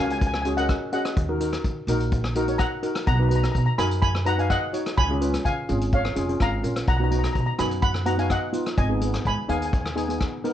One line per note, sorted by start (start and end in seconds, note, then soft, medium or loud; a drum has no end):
0.00 0.72 C#2 loud
0.00 0.26 C#4 medium
0.00 0.26 F#4 medium
0.00 0.26 A#4 medium
0.05 0.10 G#5 medium
0.10 0.17 G#5 medium
0.10 closed hi-hat medium
0.18 0.25 G#5 medium
0.18 kick loud
0.18 closed hi-hat medium
0.27 0.33 G#5 medium
0.34 0.41 G#5 medium
0.34 cross-stick medium
0.42 0.53 C#4 medium
0.42 0.53 F#4 medium
0.42 0.53 G#4 medium
0.42 0.49 G#5 medium
0.42 closed hi-hat medium
0.57 0.79 C#4 medium
0.57 0.79 F#4 medium
0.57 0.79 A#4 medium
0.57 0.90 D#5 medium
0.57 0.92 F#5 medium
0.57 closed hi-hat medium
0.69 kick medium
0.69 cross-stick medium
0.69 closed hi-hat medium
0.93 1.14 C#4 medium
0.93 1.14 F#4 medium
0.93 1.15 G#4 medium
0.93 1.85 D#5 medium
0.93 1.84 F#5 medium
0.93 closed hi-hat medium
1.05 cross-stick medium
1.05 closed hi-hat medium
1.17 1.54 D#2 loud
1.17 kick loud
1.17 closed hi-hat medium
1.29 1.36 D#4 medium
1.29 1.36 F#4 medium
1.29 1.36 A#4 medium
1.40 1.69 D#4 medium
1.40 1.69 F#4 medium
1.40 1.69 A#4 medium
1.40 closed hi-hat medium
1.53 cross-stick medium
1.53 closed hi-hat medium
1.64 1.74 D#3 loud
1.64 kick medium
1.64 closed hi-hat medium
1.87 2.62 A#1 loud
1.87 2.17 D#4 medium
1.87 2.17 F#4 medium
1.87 2.17 A#4 loud
1.87 closed hi-hat medium
2.00 closed hi-hat medium
2.12 kick loud
2.12 closed hi-hat medium
2.24 cross-stick medium
2.35 2.43 D#4 loud
2.35 2.43 F#4 medium
2.35 2.43 A#4 loud
2.35 closed hi-hat medium
2.48 2.69 D#4 medium
2.48 2.70 F#4 medium
2.48 2.70 C#5 medium
2.48 closed hi-hat medium
2.58 3.04 F#5 medium
2.58 3.03 A#5 loud
2.58 kick medium
2.58 cross-stick medium
2.58 closed hi-hat medium
2.83 3.05 D#4 medium
2.83 3.05 F#4 medium
2.83 3.05 A#4 medium
2.83 closed hi-hat medium
2.95 cross-stick loud
2.95 closed hi-hat medium
3.07 3.45 B1 loud
3.07 3.15 F#5 medium
3.07 3.13 A#5 loud
3.07 kick loud
3.07 closed hi-hat medium
3.14 3.21 A#5 medium
3.19 3.26 D#4 medium
3.19 3.26 F#4 medium
3.19 3.26 B4 medium
3.19 3.28 A#5 medium
3.29 3.60 D#4 medium
3.29 3.60 F#4 medium
3.29 3.60 B4 medium
3.29 3.34 A#5 medium
3.29 closed hi-hat medium
3.36 3.43 A#5 medium
3.43 3.51 A#5 medium
3.43 cross-stick medium
3.43 closed hi-hat medium
3.52 3.65 B2 medium
3.52 3.57 A#5 medium
3.52 kick medium
3.52 closed hi-hat medium
3.58 3.65 A#5 medium
3.66 3.74 A#5 medium
3.78 4.53 F#2 loud
3.78 4.07 D#4 medium
3.78 4.07 F#4 medium
3.78 4.07 A#4 medium
3.78 4.01 G#5 medium
3.78 4.00 B5 loud
3.78 cross-stick medium
3.78 closed hi-hat medium
3.91 closed hi-hat medium
4.02 4.13 G#5 medium
4.02 4.13 B5 loud
4.02 kick loud
4.02 closed hi-hat medium
4.15 cross-stick medium
4.25 4.33 D#4 medium
4.25 4.33 F#4 medium
4.25 4.33 B4 medium
4.25 4.39 F#5 medium
4.25 4.38 A#5 loud
4.25 closed hi-hat medium
4.38 4.60 D#4 medium
4.38 4.60 F#4 medium
4.38 4.60 B4 medium
4.38 4.50 F5 medium
4.38 4.49 G#5 medium
4.38 closed hi-hat medium
4.50 4.95 D#5 medium
4.50 4.94 F#5 loud
4.50 kick medium
4.50 cross-stick medium
4.50 closed hi-hat medium
4.73 4.95 D#4 medium
4.73 4.95 F#4 medium
4.73 4.95 C#5 medium
4.73 closed hi-hat medium
4.86 cross-stick medium
4.86 closed hi-hat medium
4.97 5.35 C#2 loud
4.97 5.42 G#5 medium
4.97 5.46 B5 loud
4.97 kick loud
4.97 closed hi-hat medium
5.10 5.17 C#4 medium
5.10 5.17 F4 medium
5.10 5.17 G#4 medium
5.21 5.50 C#4 medium
5.21 5.50 F4 medium
5.21 5.50 B4 medium
5.21 closed hi-hat medium
5.34 cross-stick medium
5.34 closed hi-hat medium
5.45 5.55 C#3 medium
5.45 5.90 F5 medium
5.45 5.94 G#5 loud
5.45 kick medium
5.45 closed hi-hat medium
5.69 6.07 G#1 loud
5.69 5.98 C#4 medium
5.69 5.98 F4 medium
5.69 5.98 G#4 medium
5.69 closed hi-hat medium
5.81 closed hi-hat medium
5.93 6.38 C#5 medium
5.93 6.38 F5 medium
5.93 kick loud
5.93 closed hi-hat medium
6.05 cross-stick medium
6.16 6.37 F1 medium
6.16 6.24 C#4 medium
6.16 6.24 F4 medium
6.16 6.24 G#4 medium
6.16 closed hi-hat medium
6.29 6.50 C#4 medium
6.29 6.50 F4 medium
6.29 6.50 G#4 medium
6.29 closed hi-hat medium
6.40 6.62 G#1 medium
6.40 6.86 F5 medium
6.40 6.87 A#5 loud
6.40 kick medium
6.40 cross-stick medium
6.40 closed hi-hat medium
6.63 6.85 A#1 medium
6.63 6.85 C#4 medium
6.63 6.85 F4 medium
6.63 6.85 A#4 medium
6.63 closed hi-hat medium
6.76 cross-stick medium
6.76 closed hi-hat medium
6.87 7.25 B1 loud
6.87 6.95 F#5 medium
6.87 6.95 A#5 loud
6.87 kick loud
6.87 closed hi-hat medium
6.97 7.07 B3 medium
6.97 7.07 D#4 medium
6.97 7.07 F#4 medium
6.97 7.03 A#5 medium
7.04 7.10 A#5 medium
7.11 7.40 B3 medium
7.11 7.40 D#4 medium
7.11 7.40 F#4 medium
7.11 7.18 A#5 medium
7.11 closed hi-hat medium
7.19 7.25 A#5 medium
7.24 7.32 A#5 medium
7.24 cross-stick medium
7.24 closed hi-hat medium
7.33 7.45 B2 medium
7.33 7.39 A#5 medium
7.33 kick medium
7.33 closed hi-hat medium
7.41 7.45 A#5 medium
7.46 7.54 A#5 medium
7.58 8.34 F#2 medium
7.58 7.88 B3 medium
7.58 7.88 D#4 medium
7.58 7.88 F#4 medium
7.58 7.81 G#5 medium
7.58 7.81 B5 medium
7.58 cross-stick medium
7.58 closed hi-hat loud
7.71 closed hi-hat medium
7.82 8.05 F#5 medium
7.82 8.07 B5 loud
7.82 kick loud
7.82 closed hi-hat medium
7.94 cross-stick medium
8.06 8.14 B3 medium
8.06 8.14 D#4 medium
8.06 8.14 F#4 medium
8.06 8.18 F#5 medium
8.06 8.18 A#5 medium
8.06 closed hi-hat medium
8.18 8.40 B3 medium
8.18 8.40 D#4 medium
8.18 8.40 F#4 medium
8.18 8.30 F5 medium
8.18 8.30 G#5 medium
8.18 closed hi-hat medium
8.30 8.75 D#5 medium
8.30 8.80 F#5 medium
8.30 kick medium
8.30 cross-stick medium
8.30 closed hi-hat medium
8.53 8.75 B3 medium
8.53 8.75 D#4 medium
8.53 8.75 F4 medium
8.53 closed hi-hat medium
8.66 cross-stick medium
8.66 closed hi-hat medium
8.78 9.15 G#1 loud
8.78 9.22 D#5 medium
8.78 9.25 G#5 medium
8.78 kick loud
8.78 closed hi-hat medium
8.89 8.97 B3 medium
8.89 8.97 D#4 medium
8.89 8.97 G#4 medium
9.01 9.30 B3 medium
9.01 9.30 D#4 medium
9.01 9.31 G#4 medium
9.01 closed hi-hat medium
9.14 cross-stick medium
9.14 closed hi-hat medium
9.25 9.35 G#2 medium
9.25 9.48 G#5 medium
9.25 9.51 B5 medium
9.25 kick medium
9.25 closed hi-hat soft
9.48 10.24 D#2 loud
9.48 9.78 B3 medium
9.48 9.78 D#4 medium
9.48 9.78 G#4 medium
9.48 9.57 F5 medium
9.48 9.57 G#5 medium
9.48 closed hi-hat medium
9.59 9.64 G#5 medium
9.59 closed hi-hat medium
9.65 9.72 G#5 medium
9.73 9.80 G#5 medium
9.73 kick loud
9.73 closed hi-hat medium
9.81 9.88 G#5 medium
9.86 9.95 G#5 soft
9.86 cross-stick medium
9.96 10.04 B3 medium
9.96 10.04 D#4 medium
9.96 10.04 G#4 medium
9.96 10.02 G#5 medium
9.96 closed hi-hat medium
10.05 10.30 B3 medium
10.05 10.30 D#4 medium
10.05 10.10 G#5 medium
10.09 10.31 G#4 medium
10.09 10.17 G#5 medium
10.09 closed hi-hat medium
10.21 kick medium
10.21 cross-stick medium
10.21 closed hi-hat medium
10.44 10.53 B3 medium
10.44 10.53 D#4 medium
10.44 10.53 A#4 medium
10.44 closed hi-hat medium